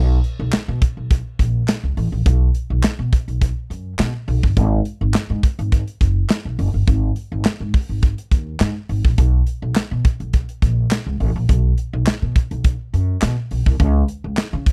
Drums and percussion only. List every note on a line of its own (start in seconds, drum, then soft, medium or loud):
0.24 closed hi-hat medium
0.53 snare loud
0.53 clap medium
0.53 closed hi-hat medium
0.82 kick loud
0.82 closed hi-hat medium
1.11 kick loud
1.11 closed hi-hat medium
1.39 kick medium
1.39 closed hi-hat medium
1.68 snare loud
1.68 clap medium
1.68 closed hi-hat loud
1.97 open hi-hat medium
2.26 kick loud
2.26 closed hi-hat medium
2.55 closed hi-hat medium
2.83 snare loud
2.83 clap medium
2.83 closed hi-hat medium
3.13 kick loud
3.13 closed hi-hat medium
3.28 closed hi-hat soft
3.41 kick loud
3.41 closed hi-hat medium
3.71 closed hi-hat medium
3.99 snare loud
3.99 clap medium
3.99 closed hi-hat loud
4.28 open hi-hat medium
4.43 kick medium
4.57 kick loud
4.57 closed hi-hat loud
4.85 closed hi-hat medium
5.14 snare loud
5.14 clap medium
5.14 closed hi-hat medium
5.43 kick loud
5.43 closed hi-hat medium
5.59 closed hi-hat soft
5.72 kick medium
5.72 closed hi-hat medium
5.87 closed hi-hat medium
6.01 kick medium
6.01 closed hi-hat medium
6.29 snare loud
6.29 clap medium
6.29 closed hi-hat loud
6.59 open hi-hat medium
6.88 kick loud
6.88 closed hi-hat medium
7.16 closed hi-hat medium
7.45 snare loud
7.45 clap medium
7.45 closed hi-hat medium
7.74 kick loud
7.74 open hi-hat medium
8.02 kick loud
8.02 closed hi-hat medium
8.18 closed hi-hat medium
8.31 kick medium
8.31 closed hi-hat medium
8.60 snare loud
8.60 clap medium
8.60 closed hi-hat loud
8.89 open hi-hat medium
9.05 kick medium
9.18 kick loud
9.18 closed hi-hat loud
9.47 closed hi-hat medium
9.76 snare loud
9.76 clap medium
9.76 closed hi-hat medium
10.05 kick loud
10.05 closed hi-hat medium
10.20 closed hi-hat soft
10.33 kick medium
10.33 closed hi-hat medium
10.49 closed hi-hat medium
10.62 kick medium
10.62 closed hi-hat medium
10.91 snare loud
10.91 clap medium
10.91 closed hi-hat loud
11.20 open hi-hat medium
11.49 kick loud
11.49 closed hi-hat medium
11.78 closed hi-hat medium
12.07 snare loud
12.07 clap medium
12.07 closed hi-hat medium
12.36 kick loud
12.36 closed hi-hat medium
12.51 closed hi-hat medium
12.64 kick loud
12.64 closed hi-hat medium
12.94 closed hi-hat medium
13.22 snare loud
13.22 clap medium
13.22 closed hi-hat loud
13.51 open hi-hat medium
13.66 kick medium
13.80 kick loud
13.80 closed hi-hat loud
14.08 closed hi-hat medium
14.37 snare loud
14.37 clap medium
14.37 closed hi-hat medium
14.66 kick loud
14.66 closed hi-hat medium